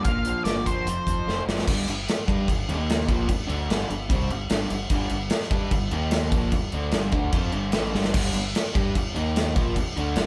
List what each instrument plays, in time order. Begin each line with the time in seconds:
0.05 fingered electric bass A#1, overdriven electric guitar A#2, lead electric guitar F5, kick, closed hi-hat
0.25 overdriven electric guitar F3, closed hi-hat
0.44 fingered electric bass G1, overdriven electric guitar A#3, lead electric guitar D5, snare, closed hi-hat
0.66 overdriven electric guitar A#2, lead electric guitar C5, kick, closed hi-hat
0.85 fingered electric bass F1, overdriven electric guitar F2, closed hi-hat
1.07 fingered electric bass F1, overdriven electric guitar C4, kick, closed hi-hat
1.26 fingered electric bass F1, overdriven electric guitar A3, snare
1.47 fingered electric bass F#1, overdriven electric guitar F3, snare
1.58 snare
1.68 fingered electric bass G1, overdriven electric guitar G2 D3 G3, kick, crash
1.88 fingered electric bass G1, overdriven electric guitar G2 D3, crash
2.08 snare, crash
2.27 fingered electric bass G2, overdriven electric guitar G3 D4 G4, kick, crash
2.48 fingered electric bass G1, overdriven electric guitar G2 D3, kick, crash
2.68 fingered electric bass D#2, overdriven electric guitar D#3 A#3 D#4, crash
2.89 snare, crash
3.08 fingered electric bass A#1, overdriven electric guitar A#2 F3 A#3, kick, crash
3.28 fingered electric bass G1, overdriven electric guitar G2 D3, kick, crash
3.47 fingered electric bass D2, overdriven electric guitar D3 A3 D4, crash
3.70 fingered electric bass G1, overdriven electric guitar G2 D3 G3, snare, crash
3.89 fingered electric bass G1, overdriven electric guitar G2 D3, crash
4.09 fingered electric bass C2, overdriven electric guitar C3 G3 C4, kick, crash
4.30 fingered electric bass G1, overdriven electric guitar G2 D3, crash
4.50 fingered electric bass G1, overdriven electric guitar G2 D3 G3, snare, crash
4.70 fingered electric bass G1, overdriven electric guitar G2 D3, crash
4.90 fingered electric bass G1, overdriven electric guitar G2 D3 G3, kick, crash
5.09 fingered electric bass G1, overdriven electric guitar G2 D3, crash
5.30 snare, crash
5.50 fingered electric bass G2, overdriven electric guitar G3 D4 G4, kick, crash
5.71 fingered electric bass G1, overdriven electric guitar G2 D3, kick, crash
5.91 fingered electric bass D#2, overdriven electric guitar D#3 A#3 D#4, crash
6.11 snare, crash
6.31 fingered electric bass A#1, overdriven electric guitar A#2 F3 A#3, kick, crash
6.52 fingered electric bass G1, overdriven electric guitar G2 D3, kick, crash
6.72 fingered electric bass D2, overdriven electric guitar D3 A3 D4, crash
6.91 fingered electric bass G1, overdriven electric guitar G2 D3 G3, snare, crash
7.12 fingered electric bass D2, overdriven electric guitar D3 A3 D4, kick, crash
7.32 fingered electric bass F2, overdriven electric guitar F3 C4 F4, kick, crash
7.52 fingered electric bass G1, overdriven electric guitar G2 D3 G3, crash
7.72 fingered electric bass A1, overdriven electric guitar A2 E3 A3, snare, crash
7.92 fingered electric bass G1, overdriven electric guitar G2 D3 G3, snare
8.04 snare
8.14 fingered electric bass G1, overdriven electric guitar G2 D3 G3, kick, crash
8.33 fingered electric bass G1, overdriven electric guitar G2 D3, crash
8.55 snare, crash
8.73 fingered electric bass G2, overdriven electric guitar G3 D4 G4, kick, crash
8.95 fingered electric bass G1, overdriven electric guitar G2 D3, kick, crash
9.14 fingered electric bass D#2, overdriven electric guitar D#3 A#3 D#4, crash
9.36 snare, crash
9.55 fingered electric bass A#1, overdriven electric guitar A#2 F3 A#3, kick, crash
9.76 fingered electric bass G1, overdriven electric guitar G2 D3, kick, crash
9.96 fingered electric bass D2, overdriven electric guitar D3 A3 D4, crash
10.16 fingered electric bass G1, overdriven electric guitar G2 D3 G3, snare, crash